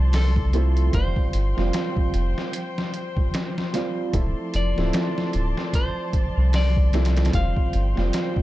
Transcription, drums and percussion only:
0.13 snare loud
0.13 open hi-hat medium
0.36 kick medium
0.53 closed hi-hat medium
0.77 closed hi-hat soft
0.93 kick loud
0.93 closed hi-hat medium
1.16 kick loud
1.33 closed hi-hat medium
1.58 snare soft
1.73 snare loud
1.73 closed hi-hat medium
1.97 kick loud
2.14 closed hi-hat medium
2.38 snare medium
2.53 closed hi-hat medium
2.78 snare medium
2.94 closed hi-hat medium
3.17 kick medium
3.34 snare loud
3.34 closed hi-hat medium
3.58 snare medium
3.74 snare soft
3.74 closed hi-hat medium
4.13 kick loud
4.13 closed hi-hat medium
4.54 closed hi-hat medium
4.78 snare soft
4.93 snare loud
4.93 closed hi-hat medium
5.18 snare soft
5.33 closed hi-hat medium
5.57 snare medium
5.73 kick loud
5.73 closed hi-hat medium
6.13 kick loud
6.13 closed hi-hat medium
6.53 snare loud
6.53 open hi-hat medium
6.76 kick loud
6.93 snare medium
6.93 closed hi-hat medium
7.05 snare medium
7.05 closed hi-hat medium
7.17 snare medium
7.17 closed hi-hat medium
7.25 snare medium
7.25 closed hi-hat medium
7.33 kick loud
7.33 closed hi-hat medium
7.57 kick loud
7.73 closed hi-hat medium
7.97 snare soft
8.13 snare loud
8.13 closed hi-hat medium
8.36 kick medium

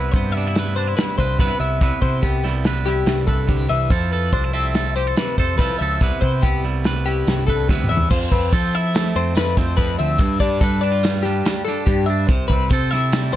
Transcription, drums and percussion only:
0.14 kick loud
0.14 closed hi-hat medium
0.35 closed hi-hat medium
0.55 snare loud
0.55 closed hi-hat medium
0.77 closed hi-hat medium
0.98 snare loud
0.98 closed hi-hat medium
1.19 kick medium
1.19 closed hi-hat medium
1.39 kick loud
1.39 closed hi-hat medium
1.61 closed hi-hat medium
1.81 kick loud
1.81 closed hi-hat medium
2.02 kick medium
2.02 closed hi-hat medium
2.23 kick loud
2.23 closed hi-hat medium
2.44 snare soft
2.44 closed hi-hat medium
2.64 snare loud
2.64 closed hi-hat medium
2.86 snare soft
2.86 closed hi-hat medium
3.06 snare medium
3.06 closed hi-hat medium
3.28 kick medium
3.28 closed hi-hat medium
3.49 kick loud
3.49 closed hi-hat medium
3.71 closed hi-hat medium
3.90 kick loud
3.90 closed hi-hat medium
4.12 closed hi-hat medium
4.32 kick loud
4.32 closed hi-hat medium
4.53 closed hi-hat medium
4.74 snare loud
4.74 closed hi-hat medium
4.96 closed hi-hat medium
5.16 snare loud
5.16 closed hi-hat medium
5.38 kick medium
5.38 closed hi-hat medium
5.59 kick loud
5.59 closed hi-hat medium
5.80 closed hi-hat medium
6.01 kick loud
6.01 closed hi-hat medium
6.21 kick medium
6.21 closed hi-hat medium
6.43 kick loud
6.43 closed hi-hat medium
6.64 closed hi-hat medium
6.84 snare loud
6.84 closed hi-hat medium
7.06 closed hi-hat medium
7.27 snare loud
7.27 closed hi-hat medium
7.48 kick medium
7.48 closed hi-hat medium
7.69 kick medium
7.69 snare medium
7.84 mid tom medium
7.97 floor tom medium
8.11 kick loud
8.11 crash loud
8.32 kick medium
8.32 closed hi-hat medium
8.53 kick loud
8.53 closed hi-hat loud
8.74 closed hi-hat medium
8.95 snare loud
8.95 closed hi-hat medium
9.16 closed hi-hat medium
9.36 snare loud
9.36 closed hi-hat medium
9.57 kick medium
9.57 snare soft
9.57 closed hi-hat medium
9.78 kick loud
9.78 closed hi-hat loud
9.98 closed hi-hat medium
10.18 kick loud
10.18 closed hi-hat loud
10.39 kick medium
10.39 closed hi-hat medium
10.61 kick loud
10.61 closed hi-hat loud
10.83 closed hi-hat medium
11.04 snare loud
11.04 closed hi-hat medium
11.25 snare soft
11.25 closed hi-hat medium
11.45 snare loud
11.45 closed hi-hat medium
11.67 snare soft
11.67 closed hi-hat medium
11.87 kick loud
11.87 closed hi-hat medium
12.08 closed hi-hat medium
12.28 kick loud
12.28 closed hi-hat medium
12.50 kick medium
12.50 closed hi-hat medium
12.70 kick loud
12.70 closed hi-hat medium
12.92 snare soft
12.92 closed hi-hat medium
13.12 snare loud
13.12 closed hi-hat medium

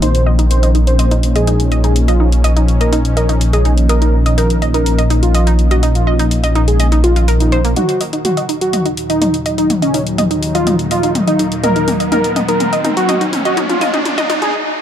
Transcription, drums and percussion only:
0.02 closed hi-hat medium
0.15 closed hi-hat soft
0.39 closed hi-hat soft
0.51 closed hi-hat medium
0.63 closed hi-hat soft
0.75 closed hi-hat soft
0.87 closed hi-hat soft
0.99 closed hi-hat medium
1.11 closed hi-hat soft
1.23 closed hi-hat soft
1.36 closed hi-hat soft
1.47 closed hi-hat medium
1.60 closed hi-hat soft
1.72 closed hi-hat soft
1.84 closed hi-hat soft
1.96 closed hi-hat medium
2.08 closed hi-hat soft
2.32 closed hi-hat soft
2.44 closed hi-hat medium
2.57 closed hi-hat soft
2.68 closed hi-hat soft
2.81 closed hi-hat soft
2.93 closed hi-hat medium
3.05 closed hi-hat soft
3.17 closed hi-hat soft
3.29 closed hi-hat soft
3.41 closed hi-hat medium
3.53 closed hi-hat soft
3.65 closed hi-hat soft
3.78 closed hi-hat soft
3.89 closed hi-hat medium
4.02 closed hi-hat soft
4.26 closed hi-hat soft
4.38 closed hi-hat medium
4.50 closed hi-hat soft
4.62 closed hi-hat soft
4.74 closed hi-hat soft
4.86 closed hi-hat medium
4.99 closed hi-hat soft
5.10 closed hi-hat soft
5.23 closed hi-hat soft
5.35 closed hi-hat medium
5.47 closed hi-hat soft
5.59 closed hi-hat soft
5.71 closed hi-hat soft
5.83 closed hi-hat medium
5.95 closed hi-hat soft
6.19 closed hi-hat soft
6.31 closed hi-hat medium
6.44 closed hi-hat soft
6.55 closed hi-hat soft
6.68 closed hi-hat soft
6.80 closed hi-hat medium
6.92 closed hi-hat soft
7.04 closed hi-hat medium
7.16 closed hi-hat soft
7.28 closed hi-hat medium
7.40 closed hi-hat soft
7.52 closed hi-hat soft
7.65 closed hi-hat soft
7.76 closed hi-hat medium
7.76 mid tom soft
7.89 closed hi-hat soft
8.01 open hi-hat loud
8.13 closed hi-hat soft
8.25 closed hi-hat medium
8.25 mid tom soft
8.37 closed hi-hat soft
8.49 open hi-hat medium
8.61 closed hi-hat soft
8.73 closed hi-hat medium
8.73 mid tom soft
8.86 closed hi-hat soft
8.97 open hi-hat loud
9.10 closed hi-hat soft
9.22 closed hi-hat medium
9.22 mid tom medium
9.34 closed hi-hat soft
9.46 open hi-hat medium
9.58 closed hi-hat soft
9.70 closed hi-hat medium
9.70 mid tom medium
9.82 closed hi-hat soft
9.94 open hi-hat loud
10.07 closed hi-hat soft
10.18 closed hi-hat medium
10.18 mid tom medium
10.31 closed hi-hat soft
10.43 open hi-hat medium
10.55 closed hi-hat soft
10.67 closed hi-hat medium
10.67 mid tom medium
10.79 closed hi-hat soft
10.91 open hi-hat loud
11.03 closed hi-hat soft
11.15 closed hi-hat medium
11.15 mid tom medium
11.28 closed hi-hat soft
11.39 open hi-hat loud
11.52 closed hi-hat soft
11.64 closed hi-hat medium
11.64 mid tom medium
11.76 closed hi-hat soft
11.88 open hi-hat loud
11.88 mid tom medium
12.00 closed hi-hat soft
12.12 closed hi-hat medium
12.12 mid tom medium
12.24 closed hi-hat soft
12.36 open hi-hat loud
12.36 mid tom medium
12.49 closed hi-hat soft
12.60 closed hi-hat medium
12.60 mid tom medium
12.73 closed hi-hat soft
12.85 open hi-hat loud
12.85 mid tom medium
12.97 closed hi-hat soft
13.09 closed hi-hat medium
13.09 mid tom medium
13.21 closed hi-hat soft
13.33 open hi-hat loud
13.33 mid tom medium
13.45 closed hi-hat soft
13.57 closed hi-hat medium
13.57 mid tom medium
13.69 closed hi-hat soft
13.69 mid tom medium
13.81 open hi-hat loud
13.81 mid tom loud
13.94 closed hi-hat soft
13.94 mid tom medium
14.05 closed hi-hat medium
14.05 mid tom medium
14.18 closed hi-hat soft
14.18 mid tom medium
14.30 open hi-hat loud
14.30 mid tom loud
14.42 closed hi-hat soft
14.42 mid tom medium

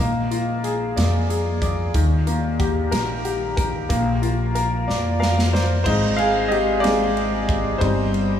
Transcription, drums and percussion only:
0.32 closed hi-hat soft
0.64 closed hi-hat soft
0.97 snare loud
0.97 closed hi-hat medium
1.30 closed hi-hat soft
1.62 kick medium
1.62 closed hi-hat soft
1.94 kick medium
1.94 closed hi-hat medium
2.27 closed hi-hat soft
2.60 kick medium
2.60 closed hi-hat soft
2.92 snare loud
2.92 closed hi-hat medium
3.25 closed hi-hat soft
3.57 kick medium
3.57 closed hi-hat soft
3.90 kick medium
3.90 closed hi-hat medium
4.23 closed hi-hat soft
4.56 closed hi-hat soft
4.90 snare medium
5.22 snare medium
5.39 snare medium
5.55 snare medium
5.86 kick loud
5.86 crash medium
6.18 ride soft
6.52 ride soft
6.84 snare loud
6.84 ride medium
7.17 ride soft
7.49 kick medium
7.49 ride soft
7.81 kick loud
7.81 ride medium
8.14 ride soft

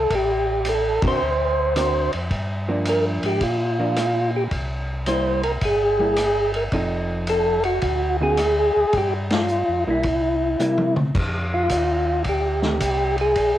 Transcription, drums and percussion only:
0.10 kick soft
0.10 ride medium
0.65 hi-hat pedal soft
0.65 ride medium
1.02 kick medium
1.02 ride medium
1.76 cross-stick medium
1.76 hi-hat pedal medium
1.76 ride medium
2.13 ride soft
2.31 kick soft
2.31 ride soft
2.85 hi-hat pedal soft
2.85 ride medium
3.23 ride soft
3.41 kick soft
3.41 ride medium
3.96 cross-stick medium
3.96 hi-hat pedal medium
3.96 ride medium
4.51 kick soft
4.51 ride soft
5.06 hi-hat pedal soft
5.06 ride medium
5.43 ride soft
5.61 kick soft
5.61 ride medium
6.16 cross-stick medium
6.16 hi-hat pedal soft
6.16 ride medium
6.54 ride soft
6.72 kick soft
6.72 ride soft
7.27 hi-hat pedal soft
7.27 ride medium
7.63 ride soft
7.81 kick soft
7.81 ride medium
8.37 cross-stick medium
8.37 hi-hat pedal medium
8.37 ride medium
8.93 kick soft
8.93 ride soft
9.30 snare medium
9.30 ride medium
9.48 hi-hat pedal soft
10.03 kick soft
10.03 ride soft
10.59 hi-hat pedal medium
10.78 high tom medium
10.96 mid tom medium
11.15 kick medium
11.15 crash medium
11.69 kick soft
11.69 hi-hat pedal soft
11.69 ride medium
12.24 kick soft
12.24 ride soft
12.62 snare soft
12.80 kick soft
12.80 hi-hat pedal medium
12.80 ride medium
13.18 ride soft
13.35 kick soft
13.35 ride medium

